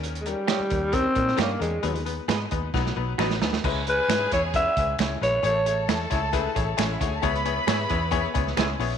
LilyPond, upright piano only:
\new Staff \with { instrumentName = "Upright piano" } { \time 4/4 \key cis \minor \tempo 4 = 134 << { r1 | r4. dis''8 fis''4 fis''8 gis''8 | r1 | r1 |
r1 | } \\ { <g cis' dis' ais'>8 <g cis' dis' ais'>8 <g cis' dis' g'>8 <g cis' dis' ais'>8 <g cis' dis' ais'>8 <g cis' dis' ais'>8 <g cis' dis' ais'>8 <g cis' dis' ais'>8 | <gis b dis' b'>8 <gis b dis' b'>8 <gis b dis' b'>8 <gis b dis' b'>8 <fis b dis' b'>8 <fis b dis' b'>8 <fis b dis' b'>8 <fis b dis' b'>8 | <gis cis' e' b'>8 <gis cis' e' b'>8 <gis cis' e' b'>8 <gis cis' e' b'>8 <gis cis' e' b'>8 <gis cis' e' b'>8 <gis cis' e' cis''>8 <gis cis' e' b'>8 | <a e' gis' cis''>8 <a e' gis' cis''>8 <a e' gis' cis''>8 <a e' gis' cis''>8 <a e' gis' b'>8 <a e' gis' cis''>8 <a e' gis' cis''>8 <a e' gis' cis''>8 |
<b e' gis' cis''>8 <b e' gis' cis''>8 <b e' gis' cis''>8 <b e' gis' cis''>8 <b e' gis' cis''>8 <b e' gis' cis''>8 <b e' gis' cis''>8 <b e' gis' cis''>8 | } >> }